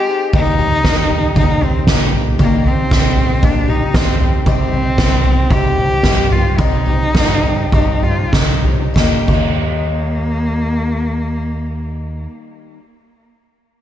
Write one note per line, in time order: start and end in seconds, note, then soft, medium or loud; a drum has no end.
0.00 0.21 G4 loud
0.07 0.33 G#3 soft
0.07 0.34 C4 medium
0.07 0.34 D#4 medium
0.07 0.33 G#4 medium
0.33 0.77 D#2 loud
0.33 0.59 D#3 medium
0.33 0.59 G3 medium
0.33 0.60 A#3 medium
0.33 1.33 D#4 loud
0.33 0.59 D#4 medium
0.33 0.58 G4 loud
0.33 kick loud
0.33 floor tom loud
0.59 0.83 A#3 soft
0.59 0.84 D#4 soft
0.59 0.85 G4 medium
0.59 floor tom medium
0.83 1.07 D#2 loud
0.83 1.10 G3 medium
0.83 1.10 A#3 medium
0.83 1.09 D#4 medium
0.83 1.08 G4 medium
0.83 kick loud
0.83 snare loud
0.83 floor tom loud
1.09 1.33 D#2 medium
1.09 1.36 A#3 medium
1.09 1.36 D#4 medium
1.09 1.36 G4 medium
1.09 floor tom medium
1.35 1.58 D#2 medium
1.35 1.62 D#3 medium
1.35 1.62 G3 medium
1.35 1.62 A#3 loud
1.35 1.62 D#4 medium
1.35 1.64 D#4 loud
1.35 1.60 G4 medium
1.35 kick loud
1.35 floor tom medium
1.61 1.84 D#2 medium
1.61 1.87 A#3 soft
1.61 1.88 C4 medium
1.61 1.88 D#4 medium
1.61 1.87 G4 medium
1.61 floor tom medium
1.87 2.41 A#1 medium
1.87 2.13 G3 medium
1.87 2.14 A#3 medium
1.87 2.24 A#3 medium
1.87 2.13 D#4 medium
1.87 2.11 G4 medium
1.87 kick loud
1.87 snare loud
1.87 floor tom loud
2.12 2.39 A#3 soft
2.12 2.40 D#4 medium
2.12 2.39 G4 medium
2.12 floor tom medium
2.39 2.65 D#3 medium
2.39 2.83 D#3 loud
2.39 2.65 G3 medium
2.39 2.66 A#3 medium
2.39 2.68 A#3 loud
2.39 2.64 D#4 medium
2.39 2.62 G4 medium
2.39 kick loud
2.39 floor tom medium
2.64 3.46 C4 loud
2.64 2.91 D#4 medium
2.64 2.90 G4 medium
2.64 floor tom loud
2.68 2.90 A#3 soft
2.90 3.35 A#1 loud
2.90 3.16 G3 medium
2.90 3.17 A#3 medium
2.90 3.16 D#4 medium
2.90 3.15 G4 medium
2.90 kick loud
2.90 snare loud
2.90 floor tom loud
3.16 3.42 A#3 soft
3.16 3.43 D#4 soft
3.16 3.42 G4 medium
3.16 floor tom medium
3.42 3.87 A#1 medium
3.42 3.68 D#3 medium
3.42 3.68 G3 medium
3.42 3.69 A#3 medium
3.42 3.71 D4 loud
3.42 3.68 D#4 loud
3.42 3.67 G4 loud
3.42 kick loud
3.42 floor tom medium
3.68 3.94 A#3 medium
3.68 3.97 D#4 loud
3.68 3.95 D#4 medium
3.68 3.94 G4 medium
3.68 floor tom medium
3.94 4.38 D#2 medium
3.94 4.20 G3 medium
3.94 4.21 A#3 medium
3.94 4.33 C4 loud
3.94 4.20 D#4 medium
3.94 4.18 G4 medium
3.94 kick loud
3.94 snare loud
3.94 floor tom medium
4.19 4.47 A#3 medium
4.19 4.46 D#4 medium
4.19 4.46 G4 medium
4.19 floor tom loud
4.46 4.90 C2 loud
4.46 4.72 C3 medium
4.46 4.72 G3 medium
4.46 4.73 C4 medium
4.46 5.53 C4 loud
4.46 4.73 D#4 loud
4.46 4.71 G4 loud
4.46 kick loud
4.46 floor tom medium
4.72 4.98 C4 soft
4.72 4.99 D#4 medium
4.72 4.98 G4 medium
4.72 floor tom medium
4.98 5.20 C2 loud
4.98 5.24 G3 medium
4.98 5.25 C4 medium
4.98 5.25 D#4 medium
4.98 5.23 G4 medium
4.98 kick loud
4.98 snare loud
4.98 floor tom medium
5.24 5.46 C2 medium
5.24 5.51 D#4 medium
5.24 5.50 G4 medium
5.24 floor tom medium
5.28 5.51 C4 medium
5.50 5.73 C2 loud
5.50 5.77 C3 medium
5.50 5.78 G3 medium
5.50 5.78 C4 medium
5.50 5.78 D#4 medium
5.50 6.34 G4 loud
5.50 5.77 G4 medium
5.50 kick loud
5.50 floor tom loud
5.77 5.99 C2 medium
5.77 6.05 D#4 medium
5.77 6.04 G4 medium
5.77 floor tom loud
5.82 6.05 C4 soft
6.03 6.59 G2 medium
6.03 6.31 G3 medium
6.03 6.32 C4 medium
6.03 6.32 D#4 medium
6.03 kick loud
6.03 snare loud
6.03 floor tom loud
6.08 6.30 G4 medium
6.31 6.59 C4 soft
6.31 6.59 D#4 medium
6.31 6.59 F4 loud
6.31 6.58 G4 medium
6.31 floor tom loud
6.58 6.86 C3 medium
6.58 7.06 C3 loud
6.58 6.86 G3 medium
6.58 6.87 C4 medium
6.58 7.72 D#4 loud
6.58 6.86 D#4 loud
6.58 6.85 G4 medium
6.58 kick loud
6.58 floor tom medium
6.86 7.13 C4 soft
6.86 7.14 D#4 medium
6.86 7.14 G4 medium
6.86 floor tom medium
7.13 7.64 G2 loud
7.13 7.43 G3 medium
7.13 7.43 C4 medium
7.13 7.43 D#4 medium
7.13 7.41 G4 medium
7.13 kick loud
7.13 snare loud
7.13 floor tom loud
7.43 7.73 C4 medium
7.43 7.73 D#4 medium
7.43 7.72 G4 medium
7.43 floor tom medium
7.72 8.24 G2 medium
7.72 8.02 C3 medium
7.72 8.03 G3 medium
7.72 8.03 C4 medium
7.72 8.05 D#4 medium
7.72 8.03 D#4 medium
7.72 8.01 G4 medium
7.72 kick loud
7.72 floor tom medium
8.02 8.32 C4 soft
8.02 8.34 D#4 medium
8.02 8.35 F4 medium
8.02 8.33 G4 medium
8.02 floor tom medium
8.32 8.86 C2 medium
8.32 8.64 G3 medium
8.32 8.64 C4 medium
8.32 8.80 D#4 medium
8.32 8.64 D#4 medium
8.32 8.62 G4 medium
8.32 kick loud
8.32 snare loud
8.32 floor tom medium
8.64 8.97 C4 soft
8.64 8.97 D#4 medium
8.64 8.96 G4 medium
8.64 floor tom medium
8.94 9.14 D#2 loud
8.94 9.27 D#3 medium
8.94 9.29 G3 loud
8.94 9.14 A#3 medium
8.94 kick loud
8.94 snare loud
8.98 9.31 A#3 loud
8.98 9.32 D#4 medium
8.98 9.34 G4 loud
9.27 12.26 D#2 loud
9.27 12.77 D#3 medium
9.27 12.80 G3 medium
9.27 12.27 A#3 loud
9.27 12.81 A#3 medium
9.27 kick loud
9.27 crash medium
9.33 12.83 D#4 medium
9.33 12.84 G4 medium